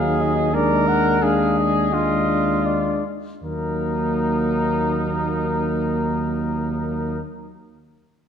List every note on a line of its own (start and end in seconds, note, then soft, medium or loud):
0.00 3.02 D#2 soft
0.00 0.51 F#3 soft
0.00 0.51 D#4 soft
0.00 0.56 G#4 medium
0.00 0.23 F5 soft
0.21 0.54 D#5 soft
0.53 1.21 G#3 soft
0.53 1.20 D4 soft
0.53 1.24 A#4 medium
0.53 0.89 D5 medium
0.88 1.26 F#5 medium
1.22 1.92 G#3 medium
1.22 1.92 D4 soft
1.22 1.95 G#4 medium
1.22 1.58 F5 soft
1.59 2.68 D#5 medium
1.93 3.04 G#3 medium
1.93 3.03 D4 medium
1.93 3.05 F4 medium
2.66 3.05 D5 soft
3.43 7.20 D#2 soft
3.43 7.20 F#3 soft
3.43 7.20 A#3 soft
3.43 7.20 D#4 soft
3.43 7.20 A#4 soft